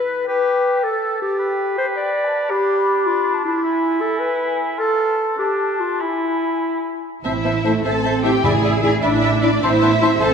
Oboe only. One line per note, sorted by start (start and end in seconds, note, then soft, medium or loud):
0.00 0.27 B4 medium
0.27 0.85 G4 medium
0.83 1.39 A4 medium
1.39 2.52 B4 medium
2.51 3.63 D4 medium
3.64 4.80 E4 medium
4.78 5.21 F4 medium
5.38 6.02 D4 medium
6.00 7.04 E4 medium
7.25 7.34 E5 medium
7.45 7.54 E5 soft
7.65 7.74 E5 soft
7.85 7.94 E5 soft
8.05 8.14 E5 soft
8.24 8.33 E5 soft
8.45 8.53 E5 soft
8.64 8.73 E5 medium
8.84 8.92 E5 medium
9.03 9.12 E5 medium
9.23 9.32 E5 soft
9.42 9.51 E5 soft
9.63 9.72 E5 medium
9.81 9.90 E5 medium
10.02 10.10 E5 medium
10.21 10.30 E5 medium